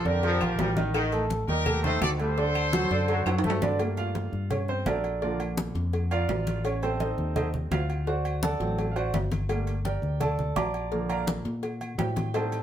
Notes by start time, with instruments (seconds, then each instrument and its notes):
0.05 fingered electric bass F2, grand piano D3 D4 D5, trumpet section G4 A#4, cowbell, high conga
0.23 trombone section F3, cowbell, high conga, low agogo
0.41 fingered electric bass A#1, grand piano F3 F4 F5, high conga, low agogo, claves
0.59 fingered electric bass A1, trombone section G3, cowbell, high conga, low timbale
0.77 grand piano D#3 D#4 D#5, cowbell, high conga, low agogo
0.94 trombone section D#3, cowbell, high conga, low agogo, claves
1.12 grand piano A3 A4 A5, high conga, low agogo
1.30 cowbell, high conga, low timbale
1.48 fingered electric bass D#2, trombone section D#3, grand piano G3 G4 G5, trumpet section G4 A#4, high conga
1.66 grand piano A3 A4 A5, cowbell, high conga, low conga, low agogo, claves
1.83 grand piano D#3 D#4 D#5, trombone section A3, trumpet section A4 C5, high conga, low conga
2.01 fingered electric bass D2, trumpet section A4 D5, cowbell, high conga, low timbale, low agogo, claves
2.19 trombone section G3, grand piano A3 A4 A5, trumpet section A4 C5, high conga, low agogo
2.38 grand piano D3 D4 D5, cowbell, high conga
2.55 high conga, low agogo, claves
2.73 grand piano F#3 F#4 F#5, trombone section F#3, cowbell, high conga, low timbale
2.90 fingered electric bass F#2, grand piano D3 D4 D5, cowbell, high conga
3.08 trombone section F#3, cowbell, high conga, low agogo
3.26 fingered electric bass F#2, grand piano F#3 F#4 F#5, high conga, high timbale, low agogo, claves
3.38 high timbale
3.43 fingered electric bass G2, trombone section A3, cowbell, high conga
3.50 low timbale
3.62 grand piano D3 D4 D5, cowbell, high conga, low timbale, low agogo
3.79 grand piano G3 A3 A#3, cowbell, high conga, low agogo
3.97 grand piano F4 F5, high conga, low agogo
4.15 cowbell, high conga, low timbale
4.32 fingered electric bass G2, high conga
4.51 grand piano C#4 C#5, cowbell, high conga, low conga, low agogo
4.68 grand piano C4 C5, high conga
4.86 fingered electric bass A#1, grand piano D4 A4 A#4 D5, cowbell, high conga, low timbale, low agogo
5.04 high conga, low agogo
5.22 grand piano D3 F3 A#3 D4 F4 A#4 D5, cowbell, high conga
5.40 high conga, low agogo
5.57 cowbell, high conga, low timbale
5.75 fingered electric bass F2, cowbell, high conga
5.93 cowbell, high conga, low agogo
6.11 grand piano F4 A#4 D5 F5, high conga, low agogo
6.28 fingered electric bass A1, cowbell, high conga, low timbale
6.47 cowbell, high conga, low agogo
6.65 grand piano C#4 C#5, cowbell, high conga, low agogo
6.82 grand piano C3 G3 C4 G4 A4 C5, high conga, low agogo
7.00 grand piano D#4 A4 C5 D#5, cowbell, high conga, low timbale
7.18 fingered electric bass D#2, high conga
7.36 grand piano D#4 A4 C5 D#5, cowbell, high conga, low conga, low agogo
7.54 high conga, low conga
7.71 fingered electric bass D2, grand piano F4 F5, cowbell, high conga, low timbale, low agogo
7.90 high conga, low agogo
8.07 grand piano F#4 C5 D5 F#5, cowbell, high conga
8.25 high conga, low agogo
8.43 grand piano A4 D5 F#5 A5, cowbell, high conga, low timbale
8.60 fingered electric bass A1, grand piano F#3 A3 C4, cowbell, high conga
8.78 cowbell, high conga, low agogo
8.91 grand piano F5
8.96 grand piano F#4 C5 D5 F#5, high conga, low agogo
9.13 fingered electric bass G1, cowbell, high conga, low timbale
9.31 cowbell, high conga, low agogo
9.49 grand piano G3 A3 A#3, cowbell, high conga, low agogo
9.67 high conga, low agogo
9.85 grand piano G4 A#4 D5 G5, cowbell, high conga, low timbale
10.02 fingered electric bass D2, high conga
10.20 grand piano A4 D5 A5, cowbell, high conga, low conga, low agogo
10.39 high conga, low conga
10.56 fingered electric bass A#1, grand piano D5 A5 A#5 D6, cowbell, high conga, low timbale, low agogo
10.74 high conga, low agogo
10.91 grand piano D3 F3 A#3, cowbell, high conga
11.09 grand piano A#4 D5 F5 A#5, high conga, low agogo
11.27 cowbell, high conga, low timbale
11.45 fingered electric bass A#2, cowbell, high conga
11.63 cowbell, high conga, low agogo
11.81 high conga, low agogo
11.98 fingered electric bass A2, grand piano G4 G5, cowbell, high conga, low timbale
12.16 cowbell, high conga, low agogo
12.34 grand piano G3 C4 D#4 A4 C5 D#5 A5, cowbell, high conga, low agogo
12.52 high conga, low agogo